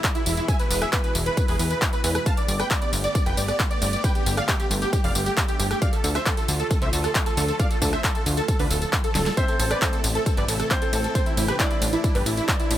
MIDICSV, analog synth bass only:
0, 0, Header, 1, 2, 480
1, 0, Start_track
1, 0, Key_signature, 0, "minor"
1, 0, Tempo, 444444
1, 523, Time_signature, 4, 2, 24, 8
1, 13801, End_track
2, 0, Start_track
2, 0, Title_t, "Analog synth bass"
2, 0, Program_c, 0, 38
2, 283, Note_on_c, 0, 28, 94
2, 442, Note_off_c, 0, 28, 0
2, 763, Note_on_c, 0, 28, 98
2, 922, Note_off_c, 0, 28, 0
2, 1244, Note_on_c, 0, 28, 91
2, 1402, Note_off_c, 0, 28, 0
2, 1603, Note_on_c, 0, 28, 90
2, 1682, Note_off_c, 0, 28, 0
2, 1722, Note_on_c, 0, 40, 80
2, 1881, Note_off_c, 0, 40, 0
2, 2203, Note_on_c, 0, 40, 102
2, 2361, Note_off_c, 0, 40, 0
2, 2683, Note_on_c, 0, 31, 93
2, 2841, Note_off_c, 0, 31, 0
2, 3164, Note_on_c, 0, 31, 88
2, 3322, Note_off_c, 0, 31, 0
2, 3524, Note_on_c, 0, 29, 102
2, 3603, Note_off_c, 0, 29, 0
2, 3644, Note_on_c, 0, 31, 82
2, 3802, Note_off_c, 0, 31, 0
2, 4124, Note_on_c, 0, 31, 98
2, 4282, Note_off_c, 0, 31, 0
2, 4603, Note_on_c, 0, 31, 99
2, 4761, Note_off_c, 0, 31, 0
2, 5083, Note_on_c, 0, 31, 93
2, 5242, Note_off_c, 0, 31, 0
2, 5444, Note_on_c, 0, 29, 97
2, 5522, Note_off_c, 0, 29, 0
2, 5564, Note_on_c, 0, 31, 80
2, 5722, Note_off_c, 0, 31, 0
2, 6043, Note_on_c, 0, 31, 95
2, 6202, Note_off_c, 0, 31, 0
2, 6524, Note_on_c, 0, 38, 98
2, 6682, Note_off_c, 0, 38, 0
2, 7003, Note_on_c, 0, 38, 92
2, 7161, Note_off_c, 0, 38, 0
2, 7364, Note_on_c, 0, 36, 97
2, 7443, Note_off_c, 0, 36, 0
2, 7484, Note_on_c, 0, 38, 84
2, 7642, Note_off_c, 0, 38, 0
2, 7963, Note_on_c, 0, 38, 99
2, 8122, Note_off_c, 0, 38, 0
2, 8443, Note_on_c, 0, 38, 101
2, 8602, Note_off_c, 0, 38, 0
2, 8923, Note_on_c, 0, 38, 90
2, 9081, Note_off_c, 0, 38, 0
2, 9282, Note_on_c, 0, 38, 89
2, 9361, Note_off_c, 0, 38, 0
2, 9402, Note_on_c, 0, 26, 85
2, 9561, Note_off_c, 0, 26, 0
2, 9883, Note_on_c, 0, 26, 99
2, 10042, Note_off_c, 0, 26, 0
2, 10363, Note_on_c, 0, 33, 96
2, 10521, Note_off_c, 0, 33, 0
2, 10843, Note_on_c, 0, 33, 92
2, 11001, Note_off_c, 0, 33, 0
2, 11204, Note_on_c, 0, 31, 100
2, 11283, Note_off_c, 0, 31, 0
2, 11324, Note_on_c, 0, 33, 81
2, 11482, Note_off_c, 0, 33, 0
2, 11803, Note_on_c, 0, 33, 94
2, 11962, Note_off_c, 0, 33, 0
2, 12283, Note_on_c, 0, 33, 97
2, 12441, Note_off_c, 0, 33, 0
2, 12763, Note_on_c, 0, 33, 93
2, 12921, Note_off_c, 0, 33, 0
2, 13123, Note_on_c, 0, 31, 99
2, 13202, Note_off_c, 0, 31, 0
2, 13243, Note_on_c, 0, 33, 86
2, 13401, Note_off_c, 0, 33, 0
2, 13723, Note_on_c, 0, 33, 93
2, 13801, Note_off_c, 0, 33, 0
2, 13801, End_track
0, 0, End_of_file